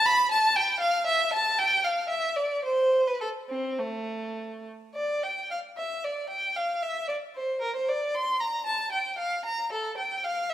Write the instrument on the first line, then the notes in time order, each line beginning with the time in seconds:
violin
0.06 B5
0.31 A5
0.56 G5
0.80 F5
1.07 E5
1.33 A5
1.59 G5
1.84 F5
2.09 E5
2.37 D5
2.65 C5
3.07 B4
3.21 A4
3.50 C4
3.79 A3
4.95 D5
5.23 G5
5.51 F5
5.77 E5
6.04 D5
6.30 G5
6.56 F5
6.83 E5
7.08 D5
7.36 C5
7.62 A#4
7.76 C5
7.88 D5
8.15 C6
8.40 A#5
8.66 A5
8.92 G5
9.18 F5
9.45 A#5
9.72 A4
9.98 G5
10.24 F5
10.50 E5